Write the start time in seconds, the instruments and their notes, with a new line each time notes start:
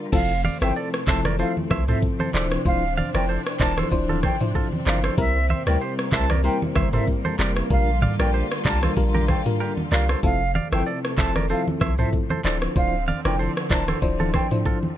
Already playing: string section D3 F4, fm electric piano G3 D4 F4 A#4
0.12 sub bass F1, string section C3 F3 A3 C4, fm electric piano F3 C4 E4 A4, flute F5, kick, crash, low conga, shaker
0.44 clean electric guitar D5 F5, high conga, shaker
0.61 sub bass G1, fm electric piano F3 C4 E4 A4, clean electric guitar C5 E5, flute G5, cross-stick, shaker
0.76 clean electric guitar A4 D5, shaker
0.94 cross-stick
1.07 sub bass F1, fm electric piano F3 C4 E4 A4, clean electric guitar C5 E5, flute A5, kick, clap, open hi-hat, low conga, shaker
1.25 clean electric guitar A#4 D5, cross-stick, high conga, shaker
1.38 fm electric piano F3 C4 E4 A4, clean electric guitar A4 C5, flute F5, shaker
1.57 high conga
1.71 sub bass C2, clean electric guitar C5 E5, kick, cross-stick, high conga, shaker
1.87 fm electric piano F3 C4 E4 A4, clean electric guitar A4 C5, flute E5, mid tom, shaker
2.02 kick, shaker
2.19 clean electric guitar A4 C5, high conga
2.34 sub bass D1, fm electric piano F3 D4 E4 C5, string section D4, clean electric guitar A4 D5, clap, shaker
2.50 cross-stick, shaker
2.65 sub bass D1, fm electric piano F3 D4 E4 C5, flute F5, kick, low conga, shaker
2.97 clean electric guitar D5 F5, high conga, shaker
3.14 sub bass F1, fm electric piano F3 D4 E4 C5, clean electric guitar A#4 D5, flute G5, cross-stick, shaker
3.29 clean electric guitar A4 C5, shaker
3.46 cross-stick
3.59 sub bass D1, fm electric piano F3 D4 E4 C5, clean electric guitar A#4 D5, flute A5, kick, clap, open hi-hat, low conga, shaker
3.78 clean electric guitar A4 C5, cross-stick, high conga, shaker
3.91 sub bass D1, fm electric piano F3 D4 E4 C5, kick, shaker
4.09 clean electric guitar F4 A4, high conga
4.23 clean electric guitar A4 C5, flute G5, kick, cross-stick, high conga, shaker
4.40 fm electric piano F3 D4 E4 C5, mid tom, shaker
4.54 clean electric guitar F4 A4, kick, shaker
4.72 high conga
4.86 sub bass G1, fm electric piano F3 D4 E4 C5, clean electric guitar A#4 D5, flute F5, clap, shaker
5.03 clean electric guitar A4 C5, cross-stick, shaker
5.18 sub bass C2, string section C3 G3 A#3, fm electric piano G3 C4 E4 A#4, flute E5, kick, low conga, shaker
5.49 clean electric guitar C5 E5, high conga, shaker
5.66 sub bass D2, fm electric piano G3 C4 E4 A#4, clean electric guitar A#4 D5, flute G5, cross-stick, shaker
5.81 clean electric guitar G4 C5, shaker
5.99 cross-stick
6.12 sub bass C2, fm electric piano G3 C4 E4 A#4, clean electric guitar C5 E5, flute A5, kick, clap, open hi-hat, low conga, shaker
6.30 clean electric guitar A#4 D5, cross-stick, high conga, shaker
6.43 fm electric piano G3 C4 E4 A#4, clean electric guitar G4 C5, flute G5, shaker
6.62 high conga
6.75 sub bass G1, clean electric guitar C5 E5, kick, cross-stick, high conga, shaker
6.92 fm electric piano G3 C4 E4 A#4, clean electric guitar A4 C5, flute E5, mid tom, shaker
7.07 kick, shaker
7.25 clean electric guitar A4 C5, high conga
7.39 sub bass F1, fm electric piano G3 C4 E4 A#4, clean electric guitar A#4 D5, clap, shaker
7.55 cross-stick, shaker
7.70 sub bass A#1, string section D3 F4, fm electric piano G3 D4 F4 A#4, flute F5, kick, low conga, shaker
8.02 clean electric guitar D5 F5, mid tom, high conga, shaker
8.19 sub bass A#1, fm electric piano G3 D4 F4 A#4, clean electric guitar A#4 D5, flute G5, cross-stick, shaker
8.34 clean electric guitar G4 C5, shaker
8.52 cross-stick
8.64 sub bass C2, fm electric piano G3 D4 F4 A#4, clean electric guitar A#4 D5, flute A5, kick, clap, open hi-hat, low conga, shaker
8.83 clean electric guitar A4 C5, cross-stick, high conga, shaker
8.96 sub bass A#1, fm electric piano G3 D4 F4 A#4, kick, shaker
9.15 clean electric guitar G4 A#4, high conga
9.28 clean electric guitar A4 C5, flute G5, kick, cross-stick, high conga, shaker
9.45 fm electric piano G3 D4 F4 A#4, mid tom, shaker
9.60 clean electric guitar G4 A#4, shaker
9.77 high conga
9.91 sub bass C2, fm electric piano G3 D4 F4 A#4, clean electric guitar A#4 D5, flute F5, clap, shaker
10.08 clean electric guitar A4 C5, cross-stick, shaker
10.23 sub bass F1, string section C3 F3 A3, fm electric piano F3 C4 E4 A4, flute F5, kick, low conga, shaker
10.54 clean electric guitar D5 F5, high conga, shaker
10.72 sub bass G1, fm electric piano F3 C4 E4 A4, clean electric guitar C5 E5, flute G5, cross-stick, shaker
10.87 clean electric guitar A4 D5, shaker
11.05 cross-stick
11.17 sub bass F1, fm electric piano F3 C4 E4 A4, clean electric guitar C5 E5, flute A5, kick, clap, open hi-hat, low conga, shaker
11.36 clean electric guitar A#4 D5, cross-stick, high conga, shaker
11.49 fm electric piano F3 C4 E4 A4, clean electric guitar A4 C5, flute F5, shaker
11.68 high conga
11.81 sub bass C2, clean electric guitar C5 E5, kick, cross-stick, high conga, shaker
11.98 fm electric piano F3 C4 E4 A4, clean electric guitar A4 C5, flute E5, mid tom, shaker
12.12 kick, shaker
12.30 clean electric guitar A4 C5, high conga
12.44 sub bass D1, string section D3 C4, fm electric piano F3 D4 E4 C5, clean electric guitar A4 D5, clap, shaker
12.61 cross-stick, shaker
12.76 sub bass D1, fm electric piano F3 D4 E4 C5, flute F5, kick, low conga, shaker
13.07 clean electric guitar D5 F5, high conga, shaker
13.25 sub bass F1, fm electric piano F3 D4 E4 C5, clean electric guitar A#4 D5, flute G5, cross-stick, shaker
13.39 clean electric guitar A4 C5, shaker
13.57 cross-stick
13.70 sub bass D1, fm electric piano F3 D4 E4 C5, clean electric guitar A#4 D5, flute A5, kick, clap, open hi-hat, low conga, shaker
13.88 clean electric guitar A4 C5, cross-stick, high conga, shaker
14.01 sub bass D1, fm electric piano F3 D4 E4 C5, kick, shaker
14.20 clean electric guitar F4 A4, high conga
14.34 clean electric guitar A4 C5, flute G5, kick, cross-stick, high conga, shaker
14.50 fm electric piano F3 D4 E4 C5, mid tom, shaker
14.65 clean electric guitar F4 A4, kick, shaker
14.83 high conga